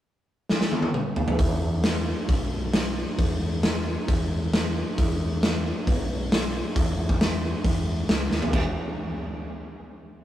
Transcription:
0.49 snare
0.61 snare
0.72 high tom
0.82 high tom
0.94 mid tom
1.16 floor tom
1.28 floor tom
1.38 fingered electric bass E2, kick, open hi-hat
1.84 snare, open hi-hat
2.28 fingered electric bass B1, kick, open hi-hat
2.73 snare, open hi-hat
3.18 fingered electric bass E2, kick, open hi-hat
3.39 fingered electric bass E2
3.63 snare, open hi-hat
4.08 fingered electric bass E2, kick, open hi-hat
4.53 snare, open hi-hat
4.98 fingered electric bass E2, kick, open hi-hat
5.43 snare, open hi-hat
5.87 fingered electric bass B1, kick, open hi-hat
6.32 snare, open hi-hat
6.75 fingered electric bass E2, kick, open hi-hat
6.97 fingered electric bass E2
7.09 kick
7.21 snare, open hi-hat
7.64 fingered electric bass E2, kick, open hi-hat
8.07 fingered electric bass C#2, snare, open hi-hat
8.30 fingered electric bass D#2, snare
8.42 floor tom
8.53 fingered electric bass E1, kick, floor tom, crash

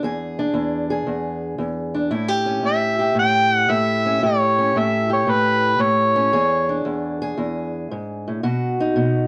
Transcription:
0.03 steel-string acoustic guitar E2 G#4
0.39 steel-string acoustic guitar D4
0.54 steel-string acoustic guitar E2
0.90 steel-string acoustic guitar G#4
1.07 steel-string acoustic guitar E2
1.58 steel-string acoustic guitar E2
1.94 steel-string acoustic guitar D4
2.11 steel-string acoustic guitar A2 E4
2.28 steel-string acoustic guitar G4
2.46 steel-string acoustic guitar C#4
2.63 steel-string acoustic guitar A2, harmonica E5
2.99 steel-string acoustic guitar G4
3.15 steel-string acoustic guitar A2
3.19 harmonica G5
3.54 harmonica F#5
3.69 steel-string acoustic guitar A2, harmonica E5
4.06 steel-string acoustic guitar C#4
4.23 steel-string acoustic guitar A2 G4, harmonica C#5
4.58 steel-string acoustic guitar C#4
4.76 steel-string acoustic guitar A2, harmonica E5
5.10 steel-string acoustic guitar G4, harmonica C#5
5.27 steel-string acoustic guitar A2
5.31 harmonica B4
5.79 steel-string acoustic guitar A2, harmonica C#5
6.16 steel-string acoustic guitar C#4
6.33 steel-string acoustic guitar E2 G#4
6.69 steel-string acoustic guitar D4
6.85 steel-string acoustic guitar E2
7.22 steel-string acoustic guitar G#4
7.38 steel-string acoustic guitar E2
7.91 steel-string acoustic guitar G#2
8.28 steel-string acoustic guitar A2
8.43 steel-string acoustic guitar B2 F#4
8.80 steel-string acoustic guitar D#4
8.96 steel-string acoustic guitar B2

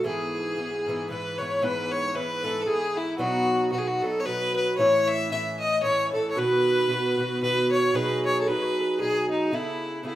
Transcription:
0.03 bouzouki G#2 E3 B3 E4, accordion G#4, fiddle G#4
0.39 accordion G#4 A4
0.56 bouzouki G#2 E3 B3 E4
0.74 accordion F#4 G#4
0.86 bouzouki G#2 E3 B3 E4
1.09 bouzouki G#2 E3 B3 E4, fiddle B4, accordion B4
1.38 bouzouki G#2 E3 B3 E4, fiddle C#5, accordion C#5
1.62 bouzouki G#2 E3 B3 E4, fiddle B4, accordion B4
1.92 fiddle C#5, accordion C#5
2.08 fiddle C#5
2.14 bouzouki G#2 E3 B3 E4, fiddle B4, accordion B4
2.43 bouzouki G#2 E3 B3 E4, accordion A4
2.62 fiddle A4
2.66 bouzouki G#2 E3 B3 E4, accordion G#4, fiddle G#4
2.95 accordion E4, fiddle E4
3.18 bouzouki B2 F#3 B3 D#4, fiddle F#4, accordion F#4
3.70 bouzouki B2 F#3 B3, accordion F#4, fiddle F#4
3.74 bouzouki D#4
3.78 fiddle G#4
3.85 accordion F#4, fiddle F#4
4.01 bouzouki B2 F#3 B3 D#4, accordion A4, fiddle A4
4.20 fiddle C#5
4.25 bouzouki B2 F#3 B3 D#4, fiddle B4, accordion B4
4.55 accordion B4, fiddle B4
4.78 bouzouki A2 E3 C#4 E4, fiddle C#5, accordion C#5
5.08 fiddle E5, accordion E5
5.30 bouzouki A2 E3 C#4 E4, fiddle E5, accordion E5
5.60 fiddle D#5, accordion D#5
5.82 bouzouki A2 E3 C#4 E4, accordion C#5, fiddle C#5
6.12 bouzouki A2 E3 C#4 E4, fiddle A4, accordion A4
6.31 fiddle C#5
6.36 bouzouki B2 D#3 B3 F#4, accordion B4, fiddle B4
6.88 bouzouki B2 D#3 B3 F#4
7.17 bouzouki B2 D#3 B3 F#4
7.41 bouzouki B2 D#3 B3 F#4, accordion B4, fiddle B4
7.71 accordion C#5, fiddle C#5
7.93 bouzouki B2 F#3 D#4 G#4, accordion B4, fiddle B4
8.23 accordion C#5, fiddle C#5
8.41 fiddle A4
8.46 bouzouki B2 F#3 D#4 G#4, accordion B4, fiddle B4
8.61 accordion B4 C#5
8.80 accordion A4 B4
8.98 bouzouki B2 F#3 D#4 G#4, accordion G#4, fiddle G#4
9.28 accordion D#4, fiddle D#4
9.51 bouzouki C#3 B3 E4 A4, accordion E4, fiddle E4
10.03 bouzouki C#3 B3 E4 A4, accordion E4, fiddle E4

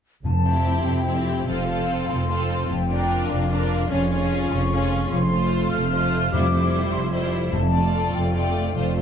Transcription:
0.24 double bass section F1, timpani F2, cello section F2, harp F3, flute section A5
0.45 viola section C4, violin section E4 G4, harp C5
0.67 harp E4
0.85 double bass section F1, cello section F2, harp C5, flute section G5
1.06 viola section C4, violin section E4 G4, harp E4
1.29 harp G4
1.48 double bass section F1, cello section F2, harp F3, viola section C4, violin section F4 A4, flute section F5
1.67 viola section C4, violin section F4 A4, harp C5
1.90 harp F4
2.08 double bass section F1, cello section F2, harp C5, flute section C6
2.29 viola section C4, violin section F4 A4, harp F4
2.51 harp A4
2.70 double bass section F1, cello section F2, harp F3, flute section G5
2.90 viola section D4, violin section F4 A#4, harp D5
3.11 harp F4
3.29 double bass section F1, cello section F2, harp D5, flute section F5
3.50 viola section D4, harp F4, violin section F4 A#4
3.71 harp A#4
3.88 double bass section F1, cello section F2, harp F3, viola section C#4, violin section F4 G#4, flute section C#5
4.10 viola section C#4, violin section F4 G#4, harp C#5
4.32 harp F4
4.50 double bass section F1, cello section F2, harp C#5, flute section C#6
4.71 viola section C#4, harp F4, violin section F4 G#4
4.92 harp G#4
5.11 double bass section F1, cello section F2, harp F3, flute section C6
5.32 viola section A3, violin section F4 C5, harp A4
5.53 harp F4
5.71 double bass section F1, cello section F2, harp A4, flute section F6
5.93 viola section A3, violin section F4 C5, harp F4
6.14 harp C5
6.32 double bass section F1, cello section F2, timpani F2, harp F3, viola section G3, violin section E4 C5, flute section D6
6.53 viola section G3, violin section E4 C5, harp G4
6.73 harp E4
6.92 double bass section F1, cello section F2, harp G4, flute section C6
7.13 viola section G3, violin section E4 C5, harp E4
7.33 harp C5
7.52 double bass section F1, cello section F2, timpani F2, harp F3, flute section A5
7.73 viola section A3, violin section F4 D5, harp A4
7.95 harp F4
8.13 double bass section F1, cello section F2, harp A4, flute section G5
8.34 viola section A3, harp F4, violin section F4 D5
8.55 harp D5
8.74 double bass section F1, cello section F2, harp F3, viola section A3, violin section F4 C5, flute section F5
8.95 viola section A3, violin section F4 C5, harp A4

